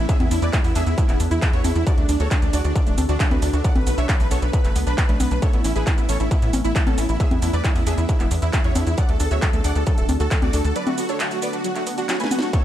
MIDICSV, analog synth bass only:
0, 0, Header, 1, 2, 480
1, 0, Start_track
1, 0, Tempo, 444444
1, 96, Time_signature, 4, 2, 24, 8
1, 13658, End_track
2, 0, Start_track
2, 0, Title_t, "Analog synth bass"
2, 0, Program_c, 0, 38
2, 216, Note_on_c, 0, 40, 87
2, 309, Note_off_c, 0, 40, 0
2, 336, Note_on_c, 0, 40, 102
2, 429, Note_off_c, 0, 40, 0
2, 455, Note_on_c, 0, 40, 96
2, 549, Note_off_c, 0, 40, 0
2, 696, Note_on_c, 0, 40, 86
2, 789, Note_off_c, 0, 40, 0
2, 816, Note_on_c, 0, 40, 100
2, 909, Note_off_c, 0, 40, 0
2, 935, Note_on_c, 0, 40, 94
2, 1029, Note_off_c, 0, 40, 0
2, 1176, Note_on_c, 0, 28, 92
2, 1269, Note_off_c, 0, 28, 0
2, 1295, Note_on_c, 0, 40, 100
2, 1389, Note_off_c, 0, 40, 0
2, 1416, Note_on_c, 0, 40, 93
2, 1509, Note_off_c, 0, 40, 0
2, 1655, Note_on_c, 0, 40, 89
2, 1749, Note_off_c, 0, 40, 0
2, 1775, Note_on_c, 0, 40, 98
2, 1869, Note_off_c, 0, 40, 0
2, 1896, Note_on_c, 0, 40, 95
2, 1989, Note_off_c, 0, 40, 0
2, 2137, Note_on_c, 0, 38, 86
2, 2230, Note_off_c, 0, 38, 0
2, 2257, Note_on_c, 0, 38, 100
2, 2350, Note_off_c, 0, 38, 0
2, 2376, Note_on_c, 0, 38, 96
2, 2469, Note_off_c, 0, 38, 0
2, 2617, Note_on_c, 0, 38, 89
2, 2710, Note_off_c, 0, 38, 0
2, 2737, Note_on_c, 0, 38, 101
2, 2830, Note_off_c, 0, 38, 0
2, 2858, Note_on_c, 0, 38, 93
2, 2950, Note_off_c, 0, 38, 0
2, 3098, Note_on_c, 0, 26, 89
2, 3190, Note_off_c, 0, 26, 0
2, 3217, Note_on_c, 0, 38, 99
2, 3310, Note_off_c, 0, 38, 0
2, 3336, Note_on_c, 0, 38, 93
2, 3429, Note_off_c, 0, 38, 0
2, 3576, Note_on_c, 0, 38, 89
2, 3669, Note_off_c, 0, 38, 0
2, 3695, Note_on_c, 0, 38, 96
2, 3789, Note_off_c, 0, 38, 0
2, 3817, Note_on_c, 0, 38, 93
2, 3909, Note_off_c, 0, 38, 0
2, 4055, Note_on_c, 0, 35, 85
2, 4149, Note_off_c, 0, 35, 0
2, 4175, Note_on_c, 0, 35, 100
2, 4269, Note_off_c, 0, 35, 0
2, 4295, Note_on_c, 0, 35, 96
2, 4389, Note_off_c, 0, 35, 0
2, 4536, Note_on_c, 0, 35, 92
2, 4629, Note_off_c, 0, 35, 0
2, 4656, Note_on_c, 0, 35, 100
2, 4749, Note_off_c, 0, 35, 0
2, 4775, Note_on_c, 0, 35, 94
2, 4869, Note_off_c, 0, 35, 0
2, 5015, Note_on_c, 0, 30, 87
2, 5109, Note_off_c, 0, 30, 0
2, 5136, Note_on_c, 0, 37, 99
2, 5229, Note_off_c, 0, 37, 0
2, 5256, Note_on_c, 0, 35, 93
2, 5349, Note_off_c, 0, 35, 0
2, 5497, Note_on_c, 0, 35, 89
2, 5590, Note_off_c, 0, 35, 0
2, 5616, Note_on_c, 0, 35, 94
2, 5709, Note_off_c, 0, 35, 0
2, 5736, Note_on_c, 0, 35, 91
2, 5830, Note_off_c, 0, 35, 0
2, 5978, Note_on_c, 0, 33, 88
2, 6070, Note_off_c, 0, 33, 0
2, 6098, Note_on_c, 0, 33, 100
2, 6190, Note_off_c, 0, 33, 0
2, 6217, Note_on_c, 0, 33, 95
2, 6310, Note_off_c, 0, 33, 0
2, 6458, Note_on_c, 0, 33, 87
2, 6550, Note_off_c, 0, 33, 0
2, 6576, Note_on_c, 0, 33, 99
2, 6669, Note_off_c, 0, 33, 0
2, 6697, Note_on_c, 0, 33, 92
2, 6790, Note_off_c, 0, 33, 0
2, 6937, Note_on_c, 0, 45, 91
2, 7030, Note_off_c, 0, 45, 0
2, 7058, Note_on_c, 0, 33, 98
2, 7150, Note_off_c, 0, 33, 0
2, 7177, Note_on_c, 0, 33, 92
2, 7270, Note_off_c, 0, 33, 0
2, 7416, Note_on_c, 0, 33, 83
2, 7509, Note_off_c, 0, 33, 0
2, 7537, Note_on_c, 0, 33, 98
2, 7630, Note_off_c, 0, 33, 0
2, 7657, Note_on_c, 0, 33, 93
2, 7750, Note_off_c, 0, 33, 0
2, 7897, Note_on_c, 0, 40, 88
2, 7990, Note_off_c, 0, 40, 0
2, 8016, Note_on_c, 0, 40, 102
2, 8109, Note_off_c, 0, 40, 0
2, 8136, Note_on_c, 0, 40, 96
2, 8229, Note_off_c, 0, 40, 0
2, 8375, Note_on_c, 0, 40, 89
2, 8469, Note_off_c, 0, 40, 0
2, 8494, Note_on_c, 0, 40, 97
2, 8588, Note_off_c, 0, 40, 0
2, 8615, Note_on_c, 0, 40, 90
2, 8709, Note_off_c, 0, 40, 0
2, 8856, Note_on_c, 0, 28, 89
2, 8949, Note_off_c, 0, 28, 0
2, 8976, Note_on_c, 0, 40, 96
2, 9069, Note_off_c, 0, 40, 0
2, 9098, Note_on_c, 0, 40, 92
2, 9190, Note_off_c, 0, 40, 0
2, 9338, Note_on_c, 0, 40, 88
2, 9430, Note_off_c, 0, 40, 0
2, 9457, Note_on_c, 0, 40, 102
2, 9550, Note_off_c, 0, 40, 0
2, 9577, Note_on_c, 0, 40, 92
2, 9670, Note_off_c, 0, 40, 0
2, 9817, Note_on_c, 0, 38, 90
2, 9910, Note_off_c, 0, 38, 0
2, 9937, Note_on_c, 0, 38, 104
2, 10030, Note_off_c, 0, 38, 0
2, 10056, Note_on_c, 0, 38, 97
2, 10149, Note_off_c, 0, 38, 0
2, 10297, Note_on_c, 0, 38, 90
2, 10390, Note_off_c, 0, 38, 0
2, 10417, Note_on_c, 0, 38, 101
2, 10510, Note_off_c, 0, 38, 0
2, 10536, Note_on_c, 0, 38, 97
2, 10629, Note_off_c, 0, 38, 0
2, 10776, Note_on_c, 0, 26, 91
2, 10869, Note_off_c, 0, 26, 0
2, 10897, Note_on_c, 0, 38, 100
2, 10990, Note_off_c, 0, 38, 0
2, 11017, Note_on_c, 0, 38, 94
2, 11110, Note_off_c, 0, 38, 0
2, 11257, Note_on_c, 0, 38, 86
2, 11350, Note_off_c, 0, 38, 0
2, 11378, Note_on_c, 0, 38, 99
2, 11470, Note_off_c, 0, 38, 0
2, 11498, Note_on_c, 0, 38, 95
2, 11590, Note_off_c, 0, 38, 0
2, 13658, End_track
0, 0, End_of_file